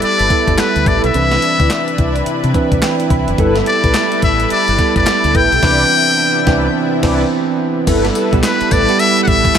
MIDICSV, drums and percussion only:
0, 0, Header, 1, 2, 480
1, 0, Start_track
1, 0, Key_signature, 1, "major"
1, 0, Tempo, 560748
1, 978, Time_signature, 4, 2, 24, 8
1, 8204, End_track
2, 0, Start_track
2, 0, Title_t, "Drums"
2, 17, Note_on_c, 9, 42, 85
2, 103, Note_off_c, 9, 42, 0
2, 166, Note_on_c, 9, 42, 53
2, 252, Note_off_c, 9, 42, 0
2, 259, Note_on_c, 9, 36, 91
2, 260, Note_on_c, 9, 42, 70
2, 345, Note_off_c, 9, 36, 0
2, 346, Note_off_c, 9, 42, 0
2, 406, Note_on_c, 9, 36, 85
2, 408, Note_on_c, 9, 42, 61
2, 492, Note_off_c, 9, 36, 0
2, 494, Note_off_c, 9, 42, 0
2, 497, Note_on_c, 9, 42, 84
2, 498, Note_on_c, 9, 38, 123
2, 499, Note_on_c, 9, 39, 93
2, 583, Note_off_c, 9, 38, 0
2, 583, Note_off_c, 9, 42, 0
2, 585, Note_off_c, 9, 39, 0
2, 649, Note_on_c, 9, 42, 58
2, 734, Note_off_c, 9, 42, 0
2, 738, Note_on_c, 9, 36, 94
2, 740, Note_on_c, 9, 42, 77
2, 824, Note_off_c, 9, 36, 0
2, 825, Note_off_c, 9, 42, 0
2, 889, Note_on_c, 9, 42, 60
2, 974, Note_off_c, 9, 42, 0
2, 978, Note_on_c, 9, 42, 77
2, 1064, Note_off_c, 9, 42, 0
2, 1126, Note_on_c, 9, 38, 67
2, 1127, Note_on_c, 9, 42, 48
2, 1212, Note_off_c, 9, 38, 0
2, 1212, Note_off_c, 9, 42, 0
2, 1218, Note_on_c, 9, 42, 85
2, 1303, Note_off_c, 9, 42, 0
2, 1367, Note_on_c, 9, 36, 83
2, 1367, Note_on_c, 9, 42, 54
2, 1452, Note_off_c, 9, 36, 0
2, 1452, Note_off_c, 9, 42, 0
2, 1458, Note_on_c, 9, 42, 62
2, 1459, Note_on_c, 9, 38, 116
2, 1460, Note_on_c, 9, 39, 102
2, 1544, Note_off_c, 9, 38, 0
2, 1544, Note_off_c, 9, 42, 0
2, 1546, Note_off_c, 9, 39, 0
2, 1608, Note_on_c, 9, 42, 54
2, 1693, Note_off_c, 9, 42, 0
2, 1698, Note_on_c, 9, 42, 80
2, 1700, Note_on_c, 9, 36, 96
2, 1783, Note_off_c, 9, 42, 0
2, 1785, Note_off_c, 9, 36, 0
2, 1845, Note_on_c, 9, 42, 57
2, 1931, Note_off_c, 9, 42, 0
2, 1937, Note_on_c, 9, 42, 83
2, 2022, Note_off_c, 9, 42, 0
2, 2086, Note_on_c, 9, 42, 53
2, 2172, Note_off_c, 9, 42, 0
2, 2178, Note_on_c, 9, 36, 93
2, 2178, Note_on_c, 9, 42, 78
2, 2263, Note_off_c, 9, 36, 0
2, 2264, Note_off_c, 9, 42, 0
2, 2325, Note_on_c, 9, 36, 87
2, 2326, Note_on_c, 9, 42, 64
2, 2411, Note_off_c, 9, 36, 0
2, 2412, Note_off_c, 9, 42, 0
2, 2416, Note_on_c, 9, 38, 119
2, 2416, Note_on_c, 9, 42, 90
2, 2418, Note_on_c, 9, 39, 97
2, 2502, Note_off_c, 9, 38, 0
2, 2502, Note_off_c, 9, 42, 0
2, 2504, Note_off_c, 9, 39, 0
2, 2565, Note_on_c, 9, 42, 57
2, 2651, Note_off_c, 9, 42, 0
2, 2657, Note_on_c, 9, 36, 100
2, 2657, Note_on_c, 9, 42, 83
2, 2742, Note_off_c, 9, 42, 0
2, 2743, Note_off_c, 9, 36, 0
2, 2806, Note_on_c, 9, 42, 55
2, 2892, Note_off_c, 9, 42, 0
2, 2896, Note_on_c, 9, 42, 81
2, 2897, Note_on_c, 9, 36, 106
2, 2982, Note_off_c, 9, 36, 0
2, 2982, Note_off_c, 9, 42, 0
2, 3043, Note_on_c, 9, 38, 68
2, 3044, Note_on_c, 9, 42, 47
2, 3129, Note_off_c, 9, 38, 0
2, 3129, Note_off_c, 9, 42, 0
2, 3136, Note_on_c, 9, 42, 77
2, 3221, Note_off_c, 9, 42, 0
2, 3285, Note_on_c, 9, 42, 57
2, 3286, Note_on_c, 9, 36, 86
2, 3370, Note_off_c, 9, 42, 0
2, 3371, Note_off_c, 9, 36, 0
2, 3375, Note_on_c, 9, 38, 127
2, 3375, Note_on_c, 9, 42, 62
2, 3377, Note_on_c, 9, 39, 99
2, 3460, Note_off_c, 9, 42, 0
2, 3461, Note_off_c, 9, 38, 0
2, 3462, Note_off_c, 9, 39, 0
2, 3524, Note_on_c, 9, 42, 56
2, 3610, Note_off_c, 9, 42, 0
2, 3615, Note_on_c, 9, 42, 77
2, 3619, Note_on_c, 9, 36, 94
2, 3700, Note_off_c, 9, 42, 0
2, 3704, Note_off_c, 9, 36, 0
2, 3763, Note_on_c, 9, 42, 57
2, 3849, Note_off_c, 9, 42, 0
2, 3855, Note_on_c, 9, 42, 84
2, 3941, Note_off_c, 9, 42, 0
2, 4005, Note_on_c, 9, 42, 54
2, 4091, Note_off_c, 9, 42, 0
2, 4097, Note_on_c, 9, 36, 91
2, 4097, Note_on_c, 9, 42, 75
2, 4182, Note_off_c, 9, 42, 0
2, 4183, Note_off_c, 9, 36, 0
2, 4245, Note_on_c, 9, 36, 92
2, 4245, Note_on_c, 9, 42, 62
2, 4331, Note_off_c, 9, 36, 0
2, 4331, Note_off_c, 9, 42, 0
2, 4336, Note_on_c, 9, 38, 127
2, 4336, Note_on_c, 9, 42, 90
2, 4338, Note_on_c, 9, 39, 99
2, 4421, Note_off_c, 9, 42, 0
2, 4422, Note_off_c, 9, 38, 0
2, 4423, Note_off_c, 9, 39, 0
2, 4486, Note_on_c, 9, 42, 62
2, 4572, Note_off_c, 9, 42, 0
2, 4577, Note_on_c, 9, 36, 102
2, 4578, Note_on_c, 9, 42, 80
2, 4663, Note_off_c, 9, 36, 0
2, 4664, Note_off_c, 9, 42, 0
2, 4728, Note_on_c, 9, 42, 57
2, 4814, Note_off_c, 9, 42, 0
2, 4817, Note_on_c, 9, 36, 109
2, 4817, Note_on_c, 9, 38, 98
2, 4817, Note_on_c, 9, 49, 87
2, 4902, Note_off_c, 9, 38, 0
2, 4902, Note_off_c, 9, 49, 0
2, 4903, Note_off_c, 9, 36, 0
2, 5537, Note_on_c, 9, 38, 104
2, 5538, Note_on_c, 9, 36, 109
2, 5622, Note_off_c, 9, 38, 0
2, 5623, Note_off_c, 9, 36, 0
2, 6018, Note_on_c, 9, 36, 116
2, 6018, Note_on_c, 9, 38, 113
2, 6018, Note_on_c, 9, 49, 86
2, 6103, Note_off_c, 9, 38, 0
2, 6103, Note_off_c, 9, 49, 0
2, 6104, Note_off_c, 9, 36, 0
2, 6738, Note_on_c, 9, 42, 77
2, 6738, Note_on_c, 9, 49, 101
2, 6738, Note_on_c, 9, 54, 69
2, 6739, Note_on_c, 9, 36, 108
2, 6824, Note_off_c, 9, 42, 0
2, 6824, Note_off_c, 9, 49, 0
2, 6824, Note_off_c, 9, 54, 0
2, 6825, Note_off_c, 9, 36, 0
2, 6888, Note_on_c, 9, 38, 68
2, 6888, Note_on_c, 9, 42, 51
2, 6974, Note_off_c, 9, 38, 0
2, 6974, Note_off_c, 9, 42, 0
2, 6978, Note_on_c, 9, 54, 64
2, 6979, Note_on_c, 9, 42, 80
2, 7063, Note_off_c, 9, 54, 0
2, 7065, Note_off_c, 9, 42, 0
2, 7128, Note_on_c, 9, 36, 85
2, 7128, Note_on_c, 9, 42, 52
2, 7214, Note_off_c, 9, 36, 0
2, 7214, Note_off_c, 9, 42, 0
2, 7218, Note_on_c, 9, 42, 66
2, 7219, Note_on_c, 9, 38, 123
2, 7220, Note_on_c, 9, 54, 102
2, 7221, Note_on_c, 9, 39, 107
2, 7304, Note_off_c, 9, 42, 0
2, 7305, Note_off_c, 9, 38, 0
2, 7306, Note_off_c, 9, 39, 0
2, 7306, Note_off_c, 9, 54, 0
2, 7367, Note_on_c, 9, 42, 61
2, 7453, Note_off_c, 9, 42, 0
2, 7458, Note_on_c, 9, 42, 82
2, 7458, Note_on_c, 9, 54, 77
2, 7461, Note_on_c, 9, 36, 95
2, 7543, Note_off_c, 9, 42, 0
2, 7543, Note_off_c, 9, 54, 0
2, 7547, Note_off_c, 9, 36, 0
2, 7607, Note_on_c, 9, 42, 56
2, 7692, Note_off_c, 9, 42, 0
2, 7699, Note_on_c, 9, 42, 88
2, 7702, Note_on_c, 9, 54, 65
2, 7785, Note_off_c, 9, 42, 0
2, 7787, Note_off_c, 9, 54, 0
2, 7848, Note_on_c, 9, 42, 54
2, 7933, Note_off_c, 9, 42, 0
2, 7940, Note_on_c, 9, 36, 91
2, 7940, Note_on_c, 9, 42, 73
2, 8025, Note_off_c, 9, 36, 0
2, 8026, Note_off_c, 9, 42, 0
2, 8087, Note_on_c, 9, 36, 88
2, 8088, Note_on_c, 9, 42, 62
2, 8173, Note_off_c, 9, 36, 0
2, 8174, Note_off_c, 9, 42, 0
2, 8177, Note_on_c, 9, 38, 127
2, 8177, Note_on_c, 9, 42, 88
2, 8204, Note_off_c, 9, 38, 0
2, 8204, Note_off_c, 9, 42, 0
2, 8204, End_track
0, 0, End_of_file